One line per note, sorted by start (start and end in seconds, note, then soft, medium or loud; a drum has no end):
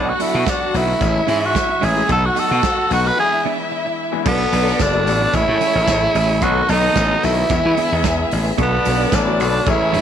0.00 0.11 B1 medium
0.00 0.60 D3 medium
0.00 0.60 F#3 medium
0.00 0.60 A3 medium
0.00 0.10 B3 loud
0.00 0.60 B3 medium
0.00 0.10 D4 loud
0.00 0.11 D4 medium
0.00 0.60 F#4 medium
0.00 0.99 F#4 loud
0.00 0.10 A4 medium
0.00 0.99 F#5 medium
0.09 0.23 F#4 medium
0.19 0.33 F#3 medium
0.19 0.33 B3 medium
0.19 0.33 D4 medium
0.19 0.51 E4 medium
0.19 0.32 A4 medium
0.19 open hi-hat medium
0.19 tambourine medium
0.34 0.43 B2 loud
0.34 0.45 F#3 soft
0.34 0.46 B3 medium
0.34 0.46 D4 medium
0.34 0.46 A4 medium
0.46 0.78 D4 medium
0.46 muted clean electric guitar stroke soft
0.46 kick loud
0.46 snare loud
0.46 closed hi-hat medium
0.46 tambourine medium
0.60 muted clean electric guitar stroke soft
0.74 0.93 B1 medium
0.74 1.01 D3 medium
0.74 1.01 F#3 medium
0.74 1.01 A3 medium
0.74 1.01 B3 medium
0.74 1.47 E4 loud
0.74 1.01 F#4 medium
0.74 open hi-hat medium
0.74 tambourine medium
0.88 muted clean electric guitar stroke medium
1.00 1.20 A1 loud
1.00 1.79 E3 medium
1.00 1.79 G#3 medium
1.00 1.79 C#4 medium
1.00 2.08 E4 medium
1.00 1.80 G#4 medium
1.00 2.07 E5 loud
1.00 muted clean electric guitar stroke soft
1.00 kick loud
1.00 closed hi-hat medium
1.00 tambourine medium
1.14 muted clean electric guitar stroke soft
1.27 1.56 G#2 medium
1.27 1.45 G#3 medium
1.27 1.42 C#4 medium
1.27 1.41 E4 medium
1.27 1.41 G#4 loud
1.27 open hi-hat medium
1.27 tambourine soft
1.42 1.87 F#4 medium
1.42 muted clean electric guitar stroke medium
1.54 muted clean electric guitar stroke soft
1.54 kick loud
1.54 snare loud
1.54 closed hi-hat medium
1.54 tambourine medium
1.68 muted clean electric guitar stroke soft
1.81 2.01 A1 medium
1.81 1.95 G#3 medium
1.81 1.95 C#4 medium
1.81 1.94 E4 medium
1.81 1.94 G#4 loud
1.81 open hi-hat medium
1.81 tambourine medium
1.85 2.11 G#4 medium
1.95 2.07 E3 medium
1.95 2.07 G#3 medium
1.95 2.07 G#3 soft
1.95 2.07 A3 medium
1.95 2.08 C#4 medium
1.95 2.07 C#4 medium
1.95 2.08 E4 medium
1.95 2.08 G#4 medium
1.95 2.07 G#4 medium
1.95 tambourine soft
2.08 2.28 B1 loud
2.08 2.26 F#3 medium
2.08 2.76 F#3 medium
2.08 2.76 A3 medium
2.08 2.26 B3 medium
2.08 2.76 B3 medium
2.08 2.76 D#4 medium
2.08 2.26 D#4 medium
2.08 3.16 F#4 loud
2.08 2.26 A4 loud
2.08 2.77 A4 medium
2.08 2.27 A4 loud
2.08 3.16 F#5 loud
2.08 kick loud
2.08 closed hi-hat medium
2.08 tambourine medium
2.26 2.41 F#4 loud
2.35 2.49 F#3 medium
2.35 2.50 B3 medium
2.35 2.49 D#4 medium
2.35 2.49 A4 medium
2.35 open hi-hat medium
2.35 tambourine medium
2.39 2.92 A4 loud
2.50 2.60 B2 loud
2.50 2.62 F#3 soft
2.50 2.62 B3 medium
2.50 2.63 D#4 medium
2.50 2.63 A4 medium
2.63 kick loud
2.63 snare loud
2.63 closed hi-hat medium
2.63 tambourine loud
2.78 muted clean electric guitar stroke soft
2.89 3.09 B1 medium
2.89 3.17 F#3 medium
2.89 3.17 A3 medium
2.89 3.16 B3 medium
2.89 3.18 D#4 medium
2.89 3.09 F#4 medium
2.89 3.18 A4 medium
2.89 open hi-hat medium
2.89 tambourine medium
3.05 3.19 B4 loud
3.05 muted clean electric guitar stroke medium
3.16 3.95 E3 medium
3.16 3.95 G#3 medium
3.16 3.95 B3 medium
3.16 3.95 D4 medium
3.16 4.24 E4 medium
3.16 3.95 G#4 medium
3.16 3.44 G#4 loud
3.16 4.24 E5 medium
3.32 muted clean electric guitar stroke soft
3.45 3.62 E3 medium
3.45 3.59 B3 medium
3.45 3.58 D4 loud
3.45 3.58 G#4 medium
3.59 muted clean electric guitar stroke soft
3.71 muted clean electric guitar stroke soft
3.86 muted clean electric guitar stroke soft
4.12 4.23 E3 medium
4.12 4.23 G#3 medium
4.12 4.23 B3 medium
4.12 4.23 D4 medium
4.12 4.24 E4 medium
4.12 muted clean electric guitar stroke soft
4.24 4.45 B1 loud
4.24 4.81 F#3 medium
4.24 4.43 F#3 loud
4.24 4.81 A3 medium
4.24 4.81 B3 medium
4.24 5.32 B3 medium
4.24 4.43 B3 loud
4.24 4.83 B3 medium
4.24 4.81 D4 medium
4.24 4.43 D4 loud
4.24 4.32 G#4 medium
4.24 5.32 A4 medium
4.24 4.44 A4 loud
4.24 5.32 D5 loud
4.24 kick loud
4.24 crash loud
4.24 tambourine medium
4.32 4.85 A4 medium
4.52 4.71 B1 loud
4.52 4.66 F#3 medium
4.52 4.66 B3 medium
4.52 4.66 D4 medium
4.52 4.66 A4 medium
4.52 open hi-hat medium
4.52 tambourine medium
4.67 4.79 F#3 soft
4.67 4.79 B3 medium
4.67 4.79 D4 medium
4.67 4.79 A4 medium
4.67 tambourine soft
4.80 5.07 F#1 loud
4.80 5.37 D4 loud
4.80 kick loud
4.80 snare loud
4.80 closed hi-hat medium
4.80 tambourine loud
4.93 5.04 F#3 medium
4.93 5.04 A3 medium
4.93 5.05 B3 medium
4.93 5.05 D4 medium
4.93 5.05 A4 medium
4.93 muted clean electric guitar stroke soft
5.06 5.26 A1 medium
5.06 5.34 F#3 medium
5.06 5.32 A3 medium
5.06 5.34 B3 medium
5.06 5.34 D4 medium
5.06 5.34 A4 loud
5.06 open hi-hat medium
5.06 tambourine medium
5.21 muted clean electric guitar stroke medium
5.33 5.44 A1 loud
5.33 6.23 E3 medium
5.33 6.23 G#3 medium
5.33 6.23 A3 medium
5.33 6.40 A3 loud
5.33 6.23 C#4 medium
5.33 6.45 E4 loud
5.33 6.40 G#4 medium
5.33 6.23 G#4 medium
5.33 6.40 C#5 loud
5.33 muted clean electric guitar stroke soft
5.33 kick loud
5.33 closed hi-hat medium
5.33 tambourine medium
5.48 5.57 A2 loud
5.48 muted clean electric guitar stroke soft
5.60 5.78 E3 medium
5.60 5.75 A3 medium
5.60 5.74 C#4 medium
5.60 5.74 G#4 loud
5.60 open hi-hat medium
5.60 tambourine soft
5.75 5.84 A1 loud
5.75 muted clean electric guitar stroke medium
5.88 6.06 A1 medium
5.88 muted clean electric guitar stroke medium
5.88 kick loud
5.88 snare loud
5.88 closed hi-hat medium
5.88 tambourine loud
6.03 muted clean electric guitar stroke soft
6.15 6.42 A1 loud
6.15 6.30 E3 medium
6.15 6.30 A3 medium
6.15 6.29 C#4 medium
6.15 6.29 G#4 medium
6.15 open hi-hat medium
6.15 tambourine medium
6.29 6.41 E3 medium
6.29 6.42 A3 medium
6.29 6.42 C#4 medium
6.29 6.42 G#4 medium
6.29 tambourine soft
6.41 6.61 B1 loud
6.41 6.48 D3 medium
6.41 6.97 F#3 medium
6.41 6.59 F#3 medium
6.41 6.97 A3 medium
6.41 6.59 B3 loud
6.41 6.98 B3 medium
6.41 7.48 B3 medium
6.41 6.59 D#4 loud
6.41 6.98 F#4 medium
6.41 6.71 F#4 loud
6.41 7.48 A4 medium
6.41 6.60 A4 loud
6.41 7.48 D#5 loud
6.41 kick loud
6.41 closed hi-hat medium
6.41 tambourine medium
6.47 7.00 D#3 medium
6.69 6.88 B1 medium
6.69 6.83 F#3 medium
6.69 6.83 B3 medium
6.69 7.26 D#4 loud
6.69 6.82 D#4 medium
6.69 6.81 A4 medium
6.69 open hi-hat medium
6.69 tambourine medium
6.83 6.95 F#3 medium
6.83 6.96 B3 medium
6.83 6.95 D#4 medium
6.83 6.95 A4 medium
6.96 7.15 A1 loud
6.96 muted clean electric guitar stroke soft
6.96 kick loud
6.96 snare loud
6.96 closed hi-hat medium
6.96 tambourine loud
7.10 7.20 D#3 medium
7.10 7.21 F#3 medium
7.10 7.21 A3 medium
7.10 7.21 B3 medium
7.10 7.21 F#4 medium
7.10 muted clean electric guitar stroke soft
7.22 7.42 B1 medium
7.22 7.50 D#3 medium
7.22 7.50 F#3 medium
7.22 7.50 A3 medium
7.22 7.48 B3 medium
7.22 7.50 D#4 loud
7.22 8.32 E4 loud
7.22 open hi-hat medium
7.22 tambourine medium
7.37 muted clean electric guitar stroke soft
7.49 7.60 E2 loud
7.49 8.39 D3 medium
7.49 8.39 E3 medium
7.49 8.39 G#3 medium
7.49 8.39 B3 medium
7.49 8.57 B3 medium
7.49 7.57 D4 medium
7.49 8.56 G#4 medium
7.49 8.56 E5 loud
7.49 kick loud
7.49 closed hi-hat medium
7.49 tambourine medium
7.57 8.43 E4 medium
7.65 7.74 E3 loud
7.65 muted clean electric guitar stroke soft
7.77 7.94 E3 medium
7.77 7.91 B3 loud
7.77 7.91 D4 medium
7.77 7.90 G#4 medium
7.77 open hi-hat medium
7.77 tambourine medium
7.91 8.01 E2 medium
7.91 muted clean electric guitar stroke soft
8.03 8.23 E2 loud
8.03 muted clean electric guitar stroke soft
8.03 kick loud
8.03 snare loud
8.03 closed hi-hat medium
8.03 tambourine loud
8.18 muted clean electric guitar stroke soft
8.31 8.51 A1 medium
8.31 open hi-hat medium
8.31 tambourine medium
8.45 muted clean electric guitar stroke soft
8.45 tambourine soft
8.57 8.77 B1 loud
8.57 9.13 D3 medium
8.57 9.14 F#3 medium
8.57 8.75 F#3 medium
8.57 9.14 A3 medium
8.57 9.14 B3 medium
8.57 8.75 B3 loud
8.57 9.65 B3 loud
8.57 8.75 D4 loud
8.57 9.14 F#4 medium
8.57 8.76 A4 loud
8.57 9.65 A4 medium
8.57 9.65 D5 loud
8.57 kick loud
8.57 closed hi-hat medium
8.57 tambourine medium
8.62 9.17 B3 loud
8.84 9.05 B1 loud
8.84 8.99 F#3 medium
8.84 8.98 B3 medium
8.84 8.98 D4 medium
8.84 8.97 A4 medium
8.84 open hi-hat medium
8.84 tambourine medium
8.99 9.10 F#3 medium
8.99 9.11 B3 medium
8.99 9.11 D4 medium
8.99 9.11 A4 medium
8.99 tambourine soft
9.11 9.40 A1 loud
9.11 9.71 D4 medium
9.11 muted clean electric guitar stroke medium
9.11 kick loud
9.11 snare loud
9.11 closed hi-hat medium
9.11 tambourine medium
9.26 9.37 D3 medium
9.26 9.37 F#3 medium
9.26 9.37 A3 medium
9.26 9.37 B3 medium
9.26 9.37 F#4 medium
9.26 muted clean electric guitar stroke soft
9.38 9.59 B1 medium
9.38 9.66 D3 medium
9.38 9.66 F#3 medium
9.38 9.65 A3 medium
9.38 9.65 B3 medium
9.38 9.67 F#4 loud
9.38 open hi-hat medium
9.38 tambourine medium
9.53 muted clean electric guitar stroke medium
9.66 9.96 A1 loud
9.66 10.01 E3 medium
9.66 10.01 G#3 medium
9.66 10.01 A3 medium
9.66 9.74 B3 medium
9.66 10.01 E4 loud
9.66 10.01 G#4 loud
9.66 10.01 C#5 loud
9.66 muted clean electric guitar stroke soft
9.66 kick loud
9.66 closed hi-hat medium
9.66 tambourine medium
9.73 10.01 C#4 medium
9.80 muted clean electric guitar stroke medium
9.93 10.01 A2 medium
9.93 10.01 E3 medium
9.93 10.01 A3 medium
9.93 10.01 C#4 medium
9.93 10.01 G#4 medium
9.93 open hi-hat medium
9.93 tambourine medium